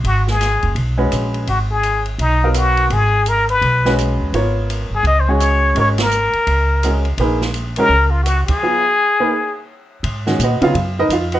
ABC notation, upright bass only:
X:1
M:4/4
L:1/8
Q:"Swing" 1/4=168
K:G#dor
V:1 name="Upright bass" clef=bass
G,,,3 F,,, B,,,2 A,,,2 | G,,,4 B,,,4 | G,,,4 B,,,3 D,, | G,,,3 =G,,, C,,4 |
G,,,3 z C,,4 | A,,,4 C,,3 z | z8 | G,,2 A,, z F,,2 E,,2 |]